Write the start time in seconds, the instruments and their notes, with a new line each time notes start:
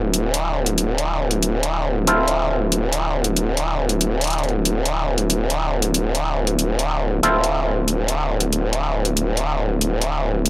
Already playing: wobble bass D1
0.14 closed hi-hat
0.34 closed hi-hat
0.66 closed hi-hat
0.78 closed hi-hat
0.98 closed hi-hat
1.31 closed hi-hat
1.43 closed hi-hat
1.63 closed hi-hat
2.07 clav C4 E4 F4 A4, closed hi-hat
2.28 closed hi-hat
2.72 closed hi-hat
2.93 closed hi-hat
3.24 closed hi-hat
3.37 closed hi-hat
3.57 closed hi-hat
3.89 closed hi-hat
4.01 closed hi-hat
4.21 closed hi-hat
4.24 closed hi-hat
4.27 closed hi-hat
4.30 closed hi-hat
4.33 closed hi-hat
4.38 closed hi-hat
4.43 closed hi-hat
4.49 closed hi-hat
4.65 closed hi-hat
4.86 closed hi-hat
5.18 closed hi-hat
5.30 closed hi-hat
5.50 closed hi-hat
5.82 closed hi-hat
5.94 closed hi-hat
6.15 closed hi-hat
6.47 closed hi-hat
6.59 closed hi-hat
6.79 closed hi-hat
7.23 wobble bass D1, clav C4 E4 F4 A4, closed hi-hat
7.44 closed hi-hat
7.88 closed hi-hat
8.08 closed hi-hat
8.40 closed hi-hat
8.53 closed hi-hat
8.73 closed hi-hat
9.05 closed hi-hat
9.17 closed hi-hat
9.37 closed hi-hat
9.81 closed hi-hat
10.02 closed hi-hat
10.46 closed hi-hat